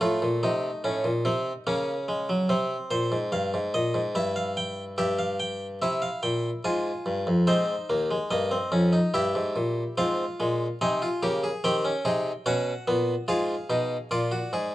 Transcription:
0.01 A2 A3 F4
0.22 A#2
0.43 C3 D#4
0.84 A2 C#4
1.04 A#2
1.25 C3 C4
1.67 C#3 A#3 C#4
2.08 G#3
2.29 F#3
2.49 C3 C4
2.91 A#2 C5
3.12 G#2
3.32 G2 F5
3.54 G#2
3.74 A#2 D#5
3.94 G#2
4.15 G2 E4 E5
4.36 F5
4.57 G5
4.98 G2 G4 E5
5.19 F5
5.40 G5
5.82 C3 E4 E5
6.02 F5
6.23 A#2 G5
6.64 G#2 F4 G#5
7.06 G2
7.27 F2
7.47 G#2 C4 D#4 C5
7.90 D#2 A#3
8.11 G#3
8.31 G2 A#3 D#5
8.51 C4
8.72 F2 C#4
8.93 D#4
9.14 G2 E4 G4 E5
9.35 G#2
9.56 A#2
9.98 G#2 C4 F4 F5
10.40 A#2 G#3
10.81 C3 C4 D#4 G#5
11.02 F4
11.23 C#3 A#3 G4
11.44 G#4
11.64 D#3 C4 G4 G5
11.85 C#4
12.05 C3 D#4 G#4
12.46 B2 C#4 F#4 F#5
12.87 A#2 B3
13.28 G#2 F4 G#4 F5
13.70 B2 D#4
14.11 A#2 F4 D5
14.31 F#4
14.53 G#2 G#4

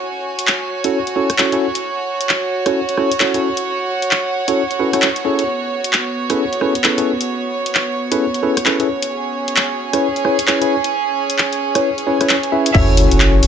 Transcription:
Already playing: F#4 C#5 G#5
0.39 closed hi-hat
0.47 clap
0.84 C#4 E4 F#4 A4 C#5, closed hi-hat
1.07 closed hi-hat
1.16 C#4 E4 F#4 A4 C#5
1.30 cross-stick, closed hi-hat
1.38 C#4 E4 F#4 A4 C#5, clap
1.52 C#4 E4 F#4 A4 C#5, closed hi-hat
1.75 closed hi-hat
2.21 closed hi-hat
2.29 clap
2.66 C#4 E4 F#4 A4 C#5 F#5, cross-stick, closed hi-hat
2.89 closed hi-hat
2.97 C#4 E4 F#4 A4 C#5, cross-stick
3.12 closed hi-hat
3.20 C#4 E4 F#4 A4 C#5, clap
3.34 C#4 E4 F#4 A4 C#5, closed hi-hat
3.57 closed hi-hat
4.02 closed hi-hat
4.11 clap
4.48 C#4 E4 F#4 A4 C#5, closed hi-hat
4.71 closed hi-hat
4.79 C#4 E4 F#4 A4 B4
4.93 C#4 E4 F#4 A4 C#5, cross-stick, closed hi-hat
5.02 clap
5.16 closed hi-hat
5.25 B3 C#4 E4 G#4 A4 C#5
5.39 closed hi-hat
5.84 closed hi-hat
5.93 clap
6.30 C#4 E4 G#4 A4 B4, cross-stick, closed hi-hat
6.53 closed hi-hat
6.61 C#4 E4 G#4 A4 B4, cross-stick
6.75 closed hi-hat
6.84 C#4 E4 G#4 A4 B4, clap
6.98 C#4 E4 G#4 A4 B4, closed hi-hat
7.21 closed hi-hat
7.66 closed hi-hat
7.75 clap
8.12 C#4 E4 G#4 A4 B4, closed hi-hat
8.34 closed hi-hat
8.43 C#4 E4 G#4 A4 B4
8.57 cross-stick, closed hi-hat
8.65 C#4 E4 G#4 A4 B4, clap
8.80 C#4 E4 G#4 A4 B4, closed hi-hat
8.88 C#4
9.02 closed hi-hat
9.12 G#4
9.48 closed hi-hat
9.56 clap
9.93 C#4 E4 G#4 B4 C#5, cross-stick, closed hi-hat
10.16 closed hi-hat
10.25 C#4 E4 G#4 B4 C#5, cross-stick
10.39 closed hi-hat
10.47 C#4 E4 G#4 B4 C#5, clap
10.61 C#4 E4 G#4 B4 C#5, closed hi-hat
10.84 closed hi-hat
11.30 closed hi-hat
11.38 clap
11.53 closed hi-hat
11.75 C#4 E4 G#4 B4 C#5, cross-stick, closed hi-hat
11.98 closed hi-hat
12.07 C#4 E4 G#4 B4 C#5
12.21 C#4 E4 G#4 B4 C#5, cross-stick, closed hi-hat
12.29 clap
12.43 closed hi-hat
12.52 C#4 E4 G#4 B4 E5
12.66 closed hi-hat
12.74 F#1 C#4 E4 F#4 A4 C#5 E5, kick, crash, sub drop
12.97 open hi-hat
13.11 F#1, closed hi-hat
13.20 clap
13.35 G#5
13.43 F#1, open hi-hat

